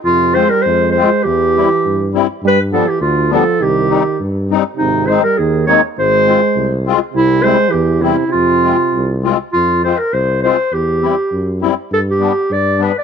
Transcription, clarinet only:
\new Staff \with { instrumentName = "Clarinet" } { \time 2/4 \key f \minor \tempo 4 = 102 f'8 c''16 bes'16 c''8 c''8 | g'4. r8 | b'8 a'16 g'16 f'8 a'8 | g'4 r4 |
ees'8 c''16 bes'16 aes'8 des''8 | c''4. r8 | e'8 c''8 g'8 e'8 | f'4. r8 |
f'8 c''16 bes'16 c''8 c''8 | g'4. r8 | a'16 g'8. d''8 b'16 d''16 | }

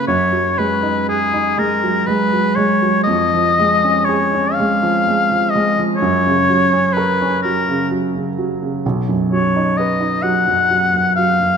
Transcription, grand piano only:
\new Staff \with { instrumentName = "Grand piano" } { \clef bass \time 6/8 \key fis \major \tempo 4. = 42 fis,16 fis16 gis16 dis'16 gis'16 dis'16 gis16 fis16 gis16 fis16 gis16 fis16 | eis,16 eis16 gis16 cis'16 gis'16 cis'16 gis16 eis16 gis16 eis16 gis16 eis16 | fis,16 cis16 fis16 cis'16 ais'16 cis'16 fis16 cis16 fis16 cis16 fis16 cis16 | b,,16 fis,16 fis16 dis'16 b'16 dis'16 fis16 fis,16 fis16 fis,16 fis16 fis,16 | }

